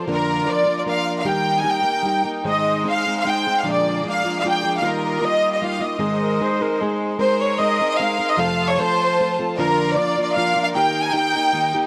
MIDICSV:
0, 0, Header, 1, 5, 480
1, 0, Start_track
1, 0, Key_signature, -4, "major"
1, 0, Tempo, 396040
1, 68, Time_signature, 3, 2, 24, 8
1, 14383, End_track
2, 0, Start_track
2, 0, Title_t, "Violin section"
2, 0, Program_c, 0, 48
2, 146, Note_on_c, 0, 70, 86
2, 555, Note_off_c, 0, 70, 0
2, 589, Note_on_c, 0, 74, 94
2, 930, Note_off_c, 0, 74, 0
2, 950, Note_on_c, 0, 74, 66
2, 995, Note_off_c, 0, 74, 0
2, 1067, Note_on_c, 0, 77, 89
2, 1386, Note_off_c, 0, 77, 0
2, 1443, Note_on_c, 0, 77, 75
2, 1529, Note_off_c, 0, 77, 0
2, 1536, Note_on_c, 0, 79, 87
2, 1885, Note_off_c, 0, 79, 0
2, 1919, Note_on_c, 0, 80, 97
2, 2015, Note_off_c, 0, 80, 0
2, 2047, Note_on_c, 0, 79, 88
2, 2749, Note_off_c, 0, 79, 0
2, 3004, Note_on_c, 0, 75, 79
2, 3433, Note_off_c, 0, 75, 0
2, 3506, Note_on_c, 0, 77, 89
2, 3814, Note_off_c, 0, 77, 0
2, 3863, Note_on_c, 0, 77, 80
2, 3948, Note_off_c, 0, 77, 0
2, 3976, Note_on_c, 0, 79, 91
2, 4313, Note_off_c, 0, 79, 0
2, 4346, Note_on_c, 0, 77, 83
2, 4436, Note_off_c, 0, 77, 0
2, 4501, Note_on_c, 0, 74, 81
2, 4934, Note_off_c, 0, 74, 0
2, 4961, Note_on_c, 0, 77, 88
2, 5262, Note_off_c, 0, 77, 0
2, 5324, Note_on_c, 0, 77, 81
2, 5398, Note_off_c, 0, 77, 0
2, 5435, Note_on_c, 0, 79, 92
2, 5736, Note_off_c, 0, 79, 0
2, 5782, Note_on_c, 0, 77, 78
2, 5871, Note_off_c, 0, 77, 0
2, 5902, Note_on_c, 0, 70, 79
2, 6350, Note_off_c, 0, 70, 0
2, 6356, Note_on_c, 0, 75, 98
2, 6687, Note_off_c, 0, 75, 0
2, 6701, Note_on_c, 0, 75, 62
2, 6801, Note_off_c, 0, 75, 0
2, 6829, Note_on_c, 0, 77, 83
2, 7041, Note_on_c, 0, 75, 64
2, 7055, Note_off_c, 0, 77, 0
2, 8245, Note_off_c, 0, 75, 0
2, 8739, Note_on_c, 0, 72, 89
2, 8960, Note_off_c, 0, 72, 0
2, 8990, Note_on_c, 0, 73, 79
2, 9211, Note_on_c, 0, 75, 90
2, 9219, Note_off_c, 0, 73, 0
2, 9554, Note_off_c, 0, 75, 0
2, 9568, Note_on_c, 0, 75, 88
2, 9669, Note_on_c, 0, 77, 81
2, 9680, Note_off_c, 0, 75, 0
2, 10039, Note_off_c, 0, 77, 0
2, 10062, Note_on_c, 0, 75, 88
2, 10144, Note_on_c, 0, 77, 83
2, 10174, Note_off_c, 0, 75, 0
2, 10514, Note_off_c, 0, 77, 0
2, 10520, Note_on_c, 0, 73, 93
2, 10641, Note_off_c, 0, 73, 0
2, 10665, Note_on_c, 0, 72, 101
2, 11368, Note_off_c, 0, 72, 0
2, 11599, Note_on_c, 0, 70, 91
2, 12038, Note_off_c, 0, 70, 0
2, 12057, Note_on_c, 0, 74, 96
2, 12384, Note_off_c, 0, 74, 0
2, 12398, Note_on_c, 0, 74, 72
2, 12518, Note_on_c, 0, 77, 102
2, 12521, Note_off_c, 0, 74, 0
2, 12876, Note_off_c, 0, 77, 0
2, 12890, Note_on_c, 0, 77, 93
2, 12947, Note_off_c, 0, 77, 0
2, 13033, Note_on_c, 0, 79, 90
2, 13361, Note_on_c, 0, 80, 107
2, 13364, Note_off_c, 0, 79, 0
2, 13474, Note_on_c, 0, 79, 112
2, 13490, Note_off_c, 0, 80, 0
2, 14213, Note_off_c, 0, 79, 0
2, 14383, End_track
3, 0, Start_track
3, 0, Title_t, "Trumpet"
3, 0, Program_c, 1, 56
3, 7540, Note_on_c, 1, 70, 86
3, 7791, Note_on_c, 1, 72, 98
3, 7809, Note_off_c, 1, 70, 0
3, 8026, Note_on_c, 1, 70, 86
3, 8044, Note_off_c, 1, 72, 0
3, 8260, Note_on_c, 1, 68, 76
3, 8278, Note_off_c, 1, 70, 0
3, 8736, Note_off_c, 1, 68, 0
3, 14383, End_track
4, 0, Start_track
4, 0, Title_t, "Violin section"
4, 0, Program_c, 2, 48
4, 55, Note_on_c, 2, 74, 67
4, 56, Note_on_c, 2, 65, 71
4, 62, Note_on_c, 2, 70, 64
4, 1489, Note_off_c, 2, 65, 0
4, 1489, Note_off_c, 2, 74, 0
4, 1516, Note_on_c, 2, 63, 74
4, 1517, Note_on_c, 2, 79, 75
4, 2929, Note_off_c, 2, 70, 0
4, 2950, Note_off_c, 2, 79, 0
4, 2969, Note_on_c, 2, 72, 75
4, 2972, Note_on_c, 2, 56, 68
4, 4381, Note_off_c, 2, 63, 0
4, 4393, Note_on_c, 2, 68, 59
4, 4396, Note_off_c, 2, 72, 0
4, 4398, Note_off_c, 2, 56, 0
4, 4400, Note_on_c, 2, 58, 71
4, 4405, Note_on_c, 2, 74, 76
4, 5821, Note_off_c, 2, 68, 0
4, 5824, Note_off_c, 2, 58, 0
4, 5827, Note_off_c, 2, 74, 0
4, 5843, Note_on_c, 2, 75, 71
4, 5844, Note_on_c, 2, 67, 68
4, 5845, Note_on_c, 2, 65, 65
4, 7265, Note_off_c, 2, 65, 0
4, 7265, Note_off_c, 2, 67, 0
4, 7265, Note_off_c, 2, 75, 0
4, 7287, Note_on_c, 2, 63, 56
4, 7287, Note_on_c, 2, 72, 80
4, 7290, Note_on_c, 2, 56, 67
4, 8713, Note_on_c, 2, 68, 71
4, 8715, Note_on_c, 2, 70, 75
4, 8718, Note_off_c, 2, 63, 0
4, 8718, Note_off_c, 2, 72, 0
4, 8720, Note_off_c, 2, 56, 0
4, 8731, Note_on_c, 2, 72, 73
4, 10144, Note_off_c, 2, 72, 0
4, 10145, Note_off_c, 2, 68, 0
4, 10146, Note_off_c, 2, 70, 0
4, 10156, Note_on_c, 2, 65, 66
4, 10158, Note_on_c, 2, 72, 67
4, 10166, Note_on_c, 2, 81, 93
4, 11573, Note_off_c, 2, 72, 0
4, 11577, Note_off_c, 2, 81, 0
4, 11613, Note_on_c, 2, 74, 86
4, 11615, Note_on_c, 2, 70, 80
4, 12989, Note_off_c, 2, 65, 0
4, 13005, Note_on_c, 2, 63, 85
4, 13012, Note_on_c, 2, 79, 76
4, 13019, Note_off_c, 2, 74, 0
4, 14383, Note_off_c, 2, 63, 0
4, 14383, Note_off_c, 2, 70, 0
4, 14383, Note_off_c, 2, 79, 0
4, 14383, End_track
5, 0, Start_track
5, 0, Title_t, "Nylon-string guitar"
5, 0, Program_c, 3, 24
5, 90, Note_on_c, 3, 53, 79
5, 92, Note_on_c, 3, 50, 78
5, 93, Note_on_c, 3, 41, 71
5, 101, Note_on_c, 3, 58, 74
5, 101, Note_on_c, 3, 62, 66
5, 104, Note_on_c, 3, 70, 70
5, 520, Note_off_c, 3, 53, 0
5, 534, Note_on_c, 3, 53, 61
5, 536, Note_off_c, 3, 62, 0
5, 537, Note_off_c, 3, 58, 0
5, 548, Note_off_c, 3, 70, 0
5, 550, Note_on_c, 3, 62, 54
5, 552, Note_on_c, 3, 58, 61
5, 559, Note_off_c, 3, 50, 0
5, 560, Note_off_c, 3, 41, 0
5, 563, Note_on_c, 3, 70, 67
5, 777, Note_off_c, 3, 62, 0
5, 779, Note_off_c, 3, 70, 0
5, 783, Note_off_c, 3, 53, 0
5, 792, Note_off_c, 3, 58, 0
5, 792, Note_on_c, 3, 62, 42
5, 793, Note_on_c, 3, 70, 45
5, 810, Note_on_c, 3, 58, 36
5, 813, Note_on_c, 3, 53, 37
5, 1029, Note_off_c, 3, 58, 0
5, 1029, Note_off_c, 3, 62, 0
5, 1030, Note_off_c, 3, 70, 0
5, 1031, Note_off_c, 3, 53, 0
5, 1044, Note_on_c, 3, 58, 63
5, 1045, Note_on_c, 3, 53, 63
5, 1048, Note_on_c, 3, 62, 59
5, 1056, Note_on_c, 3, 70, 67
5, 1510, Note_off_c, 3, 53, 0
5, 1515, Note_on_c, 3, 51, 67
5, 1515, Note_on_c, 3, 55, 68
5, 1517, Note_off_c, 3, 58, 0
5, 1519, Note_off_c, 3, 62, 0
5, 1519, Note_off_c, 3, 70, 0
5, 1524, Note_on_c, 3, 67, 79
5, 1527, Note_on_c, 3, 63, 70
5, 1529, Note_on_c, 3, 58, 75
5, 1958, Note_off_c, 3, 55, 0
5, 1970, Note_off_c, 3, 58, 0
5, 1973, Note_on_c, 3, 55, 48
5, 1976, Note_off_c, 3, 63, 0
5, 1980, Note_off_c, 3, 67, 0
5, 1985, Note_on_c, 3, 58, 61
5, 1990, Note_on_c, 3, 63, 53
5, 1994, Note_off_c, 3, 51, 0
5, 1995, Note_on_c, 3, 67, 60
5, 2192, Note_off_c, 3, 67, 0
5, 2202, Note_off_c, 3, 63, 0
5, 2206, Note_on_c, 3, 67, 37
5, 2213, Note_off_c, 3, 58, 0
5, 2216, Note_on_c, 3, 63, 33
5, 2226, Note_off_c, 3, 55, 0
5, 2228, Note_on_c, 3, 58, 37
5, 2459, Note_on_c, 3, 55, 54
5, 2461, Note_off_c, 3, 58, 0
5, 2461, Note_off_c, 3, 67, 0
5, 2466, Note_off_c, 3, 63, 0
5, 2476, Note_on_c, 3, 58, 47
5, 2490, Note_on_c, 3, 63, 51
5, 2493, Note_on_c, 3, 67, 59
5, 2698, Note_off_c, 3, 67, 0
5, 2711, Note_off_c, 3, 63, 0
5, 2712, Note_off_c, 3, 55, 0
5, 2712, Note_on_c, 3, 67, 39
5, 2721, Note_off_c, 3, 58, 0
5, 2726, Note_on_c, 3, 63, 41
5, 2735, Note_on_c, 3, 58, 35
5, 2953, Note_on_c, 3, 44, 68
5, 2956, Note_off_c, 3, 67, 0
5, 2963, Note_off_c, 3, 63, 0
5, 2964, Note_off_c, 3, 58, 0
5, 2967, Note_on_c, 3, 51, 75
5, 2969, Note_on_c, 3, 60, 66
5, 2969, Note_on_c, 3, 68, 70
5, 2970, Note_on_c, 3, 56, 68
5, 2977, Note_on_c, 3, 63, 76
5, 3424, Note_off_c, 3, 56, 0
5, 3432, Note_off_c, 3, 63, 0
5, 3433, Note_off_c, 3, 60, 0
5, 3438, Note_on_c, 3, 56, 50
5, 3439, Note_off_c, 3, 68, 0
5, 3441, Note_off_c, 3, 44, 0
5, 3447, Note_off_c, 3, 51, 0
5, 3447, Note_on_c, 3, 63, 49
5, 3448, Note_on_c, 3, 60, 57
5, 3453, Note_on_c, 3, 68, 60
5, 3685, Note_off_c, 3, 56, 0
5, 3689, Note_off_c, 3, 63, 0
5, 3690, Note_off_c, 3, 60, 0
5, 3692, Note_off_c, 3, 68, 0
5, 3712, Note_on_c, 3, 68, 39
5, 3715, Note_on_c, 3, 63, 38
5, 3733, Note_on_c, 3, 60, 37
5, 3737, Note_on_c, 3, 56, 30
5, 3922, Note_off_c, 3, 56, 0
5, 3930, Note_off_c, 3, 60, 0
5, 3936, Note_on_c, 3, 56, 53
5, 3938, Note_off_c, 3, 68, 0
5, 3940, Note_off_c, 3, 63, 0
5, 3944, Note_on_c, 3, 60, 57
5, 3963, Note_on_c, 3, 63, 60
5, 3964, Note_on_c, 3, 68, 63
5, 4174, Note_off_c, 3, 56, 0
5, 4178, Note_off_c, 3, 60, 0
5, 4187, Note_off_c, 3, 63, 0
5, 4188, Note_off_c, 3, 68, 0
5, 4201, Note_on_c, 3, 68, 40
5, 4210, Note_on_c, 3, 60, 36
5, 4211, Note_on_c, 3, 63, 31
5, 4220, Note_on_c, 3, 56, 29
5, 4400, Note_off_c, 3, 56, 0
5, 4401, Note_on_c, 3, 50, 63
5, 4409, Note_on_c, 3, 46, 64
5, 4410, Note_off_c, 3, 60, 0
5, 4415, Note_on_c, 3, 56, 71
5, 4418, Note_on_c, 3, 53, 70
5, 4421, Note_off_c, 3, 63, 0
5, 4422, Note_off_c, 3, 68, 0
5, 4425, Note_on_c, 3, 62, 79
5, 4427, Note_on_c, 3, 65, 77
5, 4873, Note_off_c, 3, 53, 0
5, 4880, Note_off_c, 3, 56, 0
5, 4882, Note_off_c, 3, 62, 0
5, 4884, Note_off_c, 3, 50, 0
5, 4888, Note_off_c, 3, 46, 0
5, 4888, Note_on_c, 3, 53, 52
5, 4894, Note_on_c, 3, 56, 60
5, 4897, Note_off_c, 3, 65, 0
5, 4897, Note_on_c, 3, 62, 58
5, 4911, Note_on_c, 3, 65, 63
5, 5129, Note_off_c, 3, 53, 0
5, 5129, Note_off_c, 3, 65, 0
5, 5132, Note_off_c, 3, 56, 0
5, 5134, Note_off_c, 3, 62, 0
5, 5144, Note_on_c, 3, 65, 46
5, 5156, Note_on_c, 3, 62, 41
5, 5163, Note_on_c, 3, 56, 34
5, 5168, Note_on_c, 3, 53, 36
5, 5361, Note_off_c, 3, 53, 0
5, 5364, Note_off_c, 3, 56, 0
5, 5372, Note_off_c, 3, 65, 0
5, 5375, Note_on_c, 3, 53, 55
5, 5378, Note_on_c, 3, 56, 52
5, 5379, Note_off_c, 3, 62, 0
5, 5392, Note_on_c, 3, 62, 61
5, 5402, Note_on_c, 3, 65, 65
5, 5609, Note_off_c, 3, 65, 0
5, 5611, Note_off_c, 3, 53, 0
5, 5612, Note_off_c, 3, 56, 0
5, 5616, Note_off_c, 3, 62, 0
5, 5624, Note_on_c, 3, 65, 44
5, 5630, Note_on_c, 3, 62, 42
5, 5635, Note_on_c, 3, 56, 35
5, 5638, Note_on_c, 3, 53, 35
5, 5832, Note_off_c, 3, 65, 0
5, 5836, Note_off_c, 3, 53, 0
5, 5837, Note_off_c, 3, 62, 0
5, 5839, Note_on_c, 3, 51, 78
5, 5841, Note_off_c, 3, 56, 0
5, 5841, Note_on_c, 3, 55, 69
5, 5842, Note_on_c, 3, 63, 77
5, 5845, Note_on_c, 3, 58, 72
5, 5846, Note_on_c, 3, 65, 82
5, 6282, Note_off_c, 3, 55, 0
5, 6297, Note_on_c, 3, 55, 58
5, 6299, Note_off_c, 3, 58, 0
5, 6306, Note_off_c, 3, 65, 0
5, 6308, Note_off_c, 3, 63, 0
5, 6313, Note_on_c, 3, 63, 63
5, 6314, Note_on_c, 3, 58, 62
5, 6320, Note_on_c, 3, 65, 62
5, 6357, Note_off_c, 3, 51, 0
5, 6787, Note_off_c, 3, 55, 0
5, 6795, Note_off_c, 3, 58, 0
5, 6798, Note_off_c, 3, 65, 0
5, 6809, Note_on_c, 3, 55, 54
5, 6810, Note_on_c, 3, 58, 52
5, 6812, Note_off_c, 3, 63, 0
5, 6816, Note_on_c, 3, 63, 56
5, 6823, Note_on_c, 3, 65, 69
5, 7009, Note_off_c, 3, 65, 0
5, 7023, Note_off_c, 3, 63, 0
5, 7024, Note_on_c, 3, 65, 43
5, 7032, Note_off_c, 3, 58, 0
5, 7038, Note_on_c, 3, 63, 38
5, 7046, Note_off_c, 3, 55, 0
5, 7046, Note_on_c, 3, 58, 33
5, 7256, Note_on_c, 3, 44, 67
5, 7258, Note_off_c, 3, 63, 0
5, 7259, Note_on_c, 3, 51, 80
5, 7261, Note_on_c, 3, 56, 74
5, 7263, Note_off_c, 3, 58, 0
5, 7267, Note_off_c, 3, 65, 0
5, 7268, Note_on_c, 3, 60, 74
5, 7272, Note_on_c, 3, 63, 78
5, 7272, Note_on_c, 3, 68, 80
5, 7749, Note_off_c, 3, 44, 0
5, 7750, Note_off_c, 3, 51, 0
5, 7752, Note_off_c, 3, 56, 0
5, 7757, Note_off_c, 3, 63, 0
5, 7757, Note_off_c, 3, 68, 0
5, 7758, Note_off_c, 3, 60, 0
5, 7763, Note_on_c, 3, 60, 54
5, 7765, Note_on_c, 3, 56, 68
5, 7777, Note_on_c, 3, 63, 63
5, 7777, Note_on_c, 3, 68, 67
5, 7995, Note_off_c, 3, 68, 0
5, 7998, Note_off_c, 3, 63, 0
5, 8006, Note_off_c, 3, 56, 0
5, 8006, Note_off_c, 3, 60, 0
5, 8009, Note_on_c, 3, 68, 41
5, 8012, Note_on_c, 3, 63, 46
5, 8023, Note_on_c, 3, 60, 36
5, 8032, Note_on_c, 3, 56, 39
5, 8243, Note_off_c, 3, 56, 0
5, 8245, Note_off_c, 3, 60, 0
5, 8247, Note_off_c, 3, 68, 0
5, 8249, Note_off_c, 3, 63, 0
5, 8257, Note_on_c, 3, 56, 61
5, 8260, Note_on_c, 3, 60, 60
5, 8271, Note_on_c, 3, 63, 66
5, 8271, Note_on_c, 3, 68, 78
5, 8699, Note_off_c, 3, 56, 0
5, 8707, Note_off_c, 3, 63, 0
5, 8710, Note_off_c, 3, 60, 0
5, 8712, Note_off_c, 3, 68, 0
5, 8713, Note_on_c, 3, 56, 71
5, 8714, Note_on_c, 3, 60, 69
5, 8717, Note_on_c, 3, 70, 78
5, 8722, Note_on_c, 3, 63, 78
5, 9185, Note_off_c, 3, 60, 0
5, 9189, Note_off_c, 3, 56, 0
5, 9195, Note_off_c, 3, 63, 0
5, 9198, Note_off_c, 3, 70, 0
5, 9200, Note_on_c, 3, 60, 58
5, 9204, Note_on_c, 3, 56, 62
5, 9209, Note_on_c, 3, 63, 59
5, 9213, Note_on_c, 3, 70, 64
5, 9434, Note_off_c, 3, 70, 0
5, 9448, Note_off_c, 3, 60, 0
5, 9448, Note_on_c, 3, 70, 42
5, 9450, Note_off_c, 3, 56, 0
5, 9452, Note_off_c, 3, 63, 0
5, 9469, Note_on_c, 3, 63, 41
5, 9471, Note_on_c, 3, 60, 34
5, 9685, Note_off_c, 3, 60, 0
5, 9687, Note_off_c, 3, 70, 0
5, 9691, Note_off_c, 3, 63, 0
5, 9691, Note_on_c, 3, 56, 57
5, 9700, Note_on_c, 3, 60, 63
5, 9706, Note_on_c, 3, 63, 64
5, 9713, Note_on_c, 3, 70, 60
5, 9906, Note_off_c, 3, 70, 0
5, 9919, Note_off_c, 3, 63, 0
5, 9920, Note_on_c, 3, 70, 46
5, 9931, Note_off_c, 3, 56, 0
5, 9932, Note_off_c, 3, 60, 0
5, 9934, Note_on_c, 3, 63, 47
5, 9946, Note_on_c, 3, 60, 33
5, 10148, Note_on_c, 3, 53, 79
5, 10149, Note_off_c, 3, 60, 0
5, 10152, Note_on_c, 3, 48, 79
5, 10158, Note_off_c, 3, 63, 0
5, 10159, Note_on_c, 3, 57, 81
5, 10161, Note_on_c, 3, 41, 77
5, 10162, Note_off_c, 3, 70, 0
5, 10163, Note_on_c, 3, 60, 85
5, 10171, Note_on_c, 3, 69, 94
5, 10634, Note_off_c, 3, 53, 0
5, 10636, Note_off_c, 3, 48, 0
5, 10639, Note_off_c, 3, 57, 0
5, 10640, Note_off_c, 3, 41, 0
5, 10641, Note_off_c, 3, 60, 0
5, 10645, Note_off_c, 3, 69, 0
5, 10656, Note_on_c, 3, 57, 61
5, 10658, Note_on_c, 3, 53, 65
5, 10672, Note_on_c, 3, 60, 69
5, 10675, Note_on_c, 3, 69, 69
5, 11124, Note_off_c, 3, 57, 0
5, 11125, Note_off_c, 3, 53, 0
5, 11132, Note_off_c, 3, 60, 0
5, 11133, Note_off_c, 3, 69, 0
5, 11148, Note_on_c, 3, 57, 66
5, 11152, Note_on_c, 3, 53, 67
5, 11162, Note_on_c, 3, 60, 78
5, 11163, Note_on_c, 3, 69, 67
5, 11372, Note_off_c, 3, 57, 0
5, 11372, Note_off_c, 3, 60, 0
5, 11372, Note_off_c, 3, 69, 0
5, 11374, Note_off_c, 3, 53, 0
5, 11386, Note_on_c, 3, 60, 44
5, 11386, Note_on_c, 3, 69, 47
5, 11395, Note_on_c, 3, 57, 47
5, 11406, Note_on_c, 3, 53, 47
5, 11606, Note_off_c, 3, 60, 0
5, 11606, Note_off_c, 3, 69, 0
5, 11609, Note_off_c, 3, 53, 0
5, 11611, Note_off_c, 3, 57, 0
5, 11614, Note_on_c, 3, 41, 81
5, 11617, Note_on_c, 3, 50, 86
5, 11623, Note_on_c, 3, 53, 81
5, 11626, Note_on_c, 3, 65, 88
5, 11628, Note_on_c, 3, 58, 94
5, 11630, Note_on_c, 3, 62, 93
5, 12057, Note_off_c, 3, 58, 0
5, 12060, Note_off_c, 3, 53, 0
5, 12068, Note_off_c, 3, 65, 0
5, 12072, Note_off_c, 3, 62, 0
5, 12072, Note_on_c, 3, 58, 61
5, 12075, Note_on_c, 3, 53, 63
5, 12079, Note_off_c, 3, 41, 0
5, 12080, Note_off_c, 3, 50, 0
5, 12083, Note_on_c, 3, 65, 78
5, 12086, Note_on_c, 3, 62, 60
5, 12311, Note_off_c, 3, 58, 0
5, 12312, Note_off_c, 3, 53, 0
5, 12316, Note_off_c, 3, 65, 0
5, 12318, Note_off_c, 3, 62, 0
5, 12334, Note_on_c, 3, 65, 39
5, 12335, Note_on_c, 3, 62, 44
5, 12343, Note_on_c, 3, 58, 46
5, 12351, Note_on_c, 3, 53, 32
5, 12545, Note_off_c, 3, 58, 0
5, 12556, Note_off_c, 3, 53, 0
5, 12557, Note_off_c, 3, 65, 0
5, 12558, Note_off_c, 3, 62, 0
5, 12560, Note_on_c, 3, 58, 72
5, 12570, Note_on_c, 3, 53, 62
5, 12580, Note_on_c, 3, 62, 61
5, 12581, Note_on_c, 3, 65, 66
5, 12778, Note_off_c, 3, 65, 0
5, 12787, Note_off_c, 3, 62, 0
5, 12789, Note_off_c, 3, 58, 0
5, 12792, Note_on_c, 3, 65, 47
5, 12799, Note_off_c, 3, 53, 0
5, 12801, Note_on_c, 3, 62, 35
5, 12804, Note_on_c, 3, 58, 41
5, 12811, Note_on_c, 3, 53, 34
5, 13014, Note_off_c, 3, 58, 0
5, 13026, Note_off_c, 3, 53, 0
5, 13026, Note_off_c, 3, 65, 0
5, 13029, Note_on_c, 3, 58, 84
5, 13031, Note_off_c, 3, 62, 0
5, 13031, Note_on_c, 3, 51, 65
5, 13036, Note_on_c, 3, 63, 77
5, 13048, Note_on_c, 3, 67, 76
5, 13472, Note_off_c, 3, 51, 0
5, 13476, Note_off_c, 3, 58, 0
5, 13481, Note_off_c, 3, 63, 0
5, 13487, Note_on_c, 3, 51, 55
5, 13489, Note_off_c, 3, 67, 0
5, 13491, Note_on_c, 3, 58, 58
5, 13495, Note_on_c, 3, 63, 66
5, 13504, Note_on_c, 3, 67, 61
5, 13736, Note_off_c, 3, 51, 0
5, 13738, Note_off_c, 3, 58, 0
5, 13741, Note_off_c, 3, 63, 0
5, 13742, Note_off_c, 3, 67, 0
5, 13756, Note_on_c, 3, 67, 43
5, 13773, Note_on_c, 3, 63, 42
5, 13775, Note_on_c, 3, 58, 39
5, 13968, Note_off_c, 3, 63, 0
5, 13969, Note_off_c, 3, 58, 0
5, 13977, Note_on_c, 3, 51, 63
5, 13981, Note_off_c, 3, 67, 0
5, 13983, Note_on_c, 3, 58, 70
5, 13983, Note_on_c, 3, 63, 55
5, 13995, Note_on_c, 3, 67, 65
5, 14217, Note_off_c, 3, 67, 0
5, 14224, Note_off_c, 3, 51, 0
5, 14227, Note_off_c, 3, 58, 0
5, 14227, Note_off_c, 3, 63, 0
5, 14232, Note_on_c, 3, 67, 54
5, 14241, Note_on_c, 3, 63, 46
5, 14245, Note_on_c, 3, 58, 42
5, 14383, Note_off_c, 3, 58, 0
5, 14383, Note_off_c, 3, 63, 0
5, 14383, Note_off_c, 3, 67, 0
5, 14383, End_track
0, 0, End_of_file